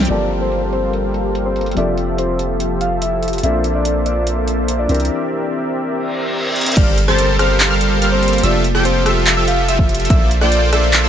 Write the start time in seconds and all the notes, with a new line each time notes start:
Already playing: E3 C4 D4 A#4
0.05 F3, closed hi-hat
0.09 G1 G3 A#3 C4 F4 G4 A4 A#4 C5 D5 F5 A5, closed hi-hat, crash
0.31 closed hi-hat
0.41 C5
0.52 closed hi-hat
0.73 C5, closed hi-hat
0.93 closed hi-hat
1.14 closed hi-hat
1.35 closed hi-hat
1.45 C5
1.56 closed hi-hat
1.61 closed hi-hat
1.66 closed hi-hat
1.71 F3, closed hi-hat
1.76 F1 F3 C4 F4 G4 A4 D5 E5, closed hi-hat
1.98 closed hi-hat
2.18 C5, closed hi-hat
2.39 closed hi-hat
2.60 closed hi-hat
2.81 F5, closed hi-hat
3.02 E5, closed hi-hat
3.23 closed hi-hat
3.28 closed hi-hat
3.33 closed hi-hat
3.38 closed hi-hat
3.43 A#1 A#3 C4 D4 F4 A4 C5 D5 E5, closed hi-hat
3.64 closed hi-hat
3.75 D5
3.85 closed hi-hat
4.06 D5, closed hi-hat
4.27 closed hi-hat
4.48 closed hi-hat
4.68 closed hi-hat
4.79 D5
4.87 C2 E3 C4 D4 G4 A#4 D5 E5, closed hi-hat
4.91 A#4, closed hi-hat
5.00 closed hi-hat
5.05 closed hi-hat
5.93 reverse cymbal
6.56 closed hi-hat
6.61 closed hi-hat
6.66 closed hi-hat
6.72 closed hi-hat
6.77 G1 G3 A#3 F4 G4 A4 A#4 C5 D5 F5 F6, kick, closed hi-hat, crash, impact
6.98 closed hi-hat
7.08 G3 G4 A4 A#4 C5 A5 A6, cross-stick
7.18 closed hi-hat
7.39 G3 G4 A4 A#4 C5 F5 F6, cross-stick, closed hi-hat
7.60 clap, closed hi-hat
7.71 G3 G4 A4 A#4 C5 F5 F6
7.81 closed hi-hat
8.02 G3 G4 A4 A#4 C5 F5 F6, closed hi-hat
8.12 C5
8.23 closed hi-hat
8.28 closed hi-hat
8.33 closed hi-hat
8.38 closed hi-hat
8.43 F1 F3 F4 G4 A4 D5 E5 E6, closed hi-hat
8.64 closed hi-hat
8.75 F3 F4 G4 A4 G5 G6, cross-stick
8.85 C5, closed hi-hat
9.06 F3 F4 G4 A4 E5 E6, cross-stick, closed hi-hat
9.27 clap, closed hi-hat
9.37 F3 F4 G4 A4 E5 E6
9.48 F5, closed hi-hat
9.68 F3 F4 G4 A4 E5 E6, closed hi-hat
9.79 kick
9.89 closed hi-hat
9.94 closed hi-hat
10.00 closed hi-hat
10.05 closed hi-hat
10.10 A#1 A3 A#3 D4 F4 A4 C5 D5 E5 E6, kick, closed hi-hat
10.31 closed hi-hat
10.41 A#3 F4 A4 C5 D5 G5 G6, cross-stick
10.52 closed hi-hat
10.73 A#3 F4 A4 C5 D5 E5 E6, cross-stick, closed hi-hat
10.93 clap, closed hi-hat
11.04 A#3 F4 A4 C5 D5 E5 E6